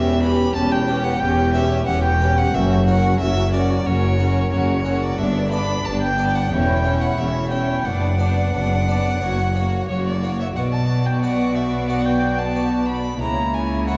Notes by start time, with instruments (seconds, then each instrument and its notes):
Already playing: double bass section E1, harpsichord E2, cello section E2, viola section C#4, violin section G4 B4, violin E5
0.22 viola section C#4, harpsichord C#4 G4 B4, violin section G4 B4, violin B5
0.55 double bass section E1, cello section E2, harpsichord E2, viola section C#4, violin section G4 B4, violin A5
0.72 violin G5
0.87 harpsichord C#4 G4 B4, viola section C#4, violin section G4 B4
1.04 violin F#5
1.20 double bass section E1, harpsichord E2, cello section E2, viola section C#4, violin section G4 B4, violin G5
1.53 viola section C#4, harpsichord C#4 G4 B4, violin section G4 B4, violin E5
1.86 double bass section E1, harpsichord E2, cello section E2, viola section C#4, violin section G4 B4, violin F#5
2.03 violin G5
2.21 viola section C#4, harpsichord C#4 G4 B4, violin section G4 B4
2.38 violin F#5
2.53 double bass section F#1, cello section F#2, harpsichord F#2, viola section C#4, violin section F#4 A#4, violin E5
2.86 harpsichord C#4 F#4 A#4, viola section C#4, violin section F#4 A#4, violin F#5
3.18 double bass section F#1, harpsichord F#2, cello section F#2, viola section C#4, violin section F#4 A#4, violin E5
3.52 viola section C#4, harpsichord C#4 F#4 A#4, violin section F#4 A#4, violin D5
3.85 double bass section F#1, harpsichord F#2, cello section F#2, viola section C#4, violin section F#4 A#4, violin C#5
4.18 viola section C#4, harpsichord C#4 F#4 A#4, violin section F#4 A#4
4.51 double bass section F#1, harpsichord F#2, cello section F#2, viola section C#4, violin section F#4 A#4, violin C#5
4.84 harpsichord C#4 F#4 A#4, viola section C#4, violin section F#4 A#4
5.03 violin D5
5.18 double bass section G1, harpsichord G2, cello section G2, viola section B3, violin section D4 D5, violin E5
5.51 harpsichord B3 D4 D5, viola section B3, violin section D4 D5, violin B5
5.84 double bass section G1, harpsichord G2, cello section G2, viola section B3, violin section D4 D5, violin A5
6.02 violin G5
6.17 harpsichord B3 D4 D5, viola section B3, violin section D4 D5
6.35 violin F#5
6.51 double bass section E1, harpsichord E2, cello section E2, viola section C#4, violin section E4 C#5, violin G5
6.84 harpsichord C#4 E4 C#5, viola section C#4, violin section E4 C#5
7.01 violin F#5
7.18 double bass section E1, harpsichord E2, cello section E2, viola section C#4, violin section E4 C#5, violin E5
7.51 harpsichord C#4 E4 C#5, viola section C#4, violin section E4 C#5, violin G5
7.84 double bass section F#1, harpsichord F#2, cello section F#2, viola section B3, violin section D4 D5, violin F#5
8.18 harpsichord B3 D4 D5, viola section B3, violin section D4 D5
8.53 double bass section F#1, cello section F#2, harpsichord F#2, viola section B3, violin section D4 D5
8.87 viola section B3, harpsichord B3 D4 D5, violin section D4 D5
9.21 double bass section F#1, cello section F#2, harpsichord F#2, viola section A#3, violin section F#4 C#5
9.54 viola section A#3, harpsichord A#3 F#4 C#5, violin section F#4 C#5
9.87 double bass section F#1, cello section F#2, harpsichord F#2, viola section A#3, violin section F#4 C#5, violin C#5
10.06 violin D5
10.21 viola section A#3, harpsichord A#3 F#4 C#5, violin section F#4 C#5
10.40 violin E5
10.55 double bass section B1, cello section B2, harpsichord B2, viola section B3, violin section F#4 D5, violin F#5
10.72 violin A5
11.06 violin G5
11.21 harpsichord B3 F#4 D5, violin F#5
11.55 violin E5
11.88 harpsichord B3 F#4 D5, violin F#5
12.05 violin G5
12.39 violin A5
12.55 harpsichord B3 F#4 D5
12.88 violin B5
13.21 double bass section C#2, harpsichord C#3, cello section C#3, viola section A#3, violin section E4 C#5, violin A#5
13.54 violin G#5
13.87 harpsichord A#3 E4 C#5, violin F#5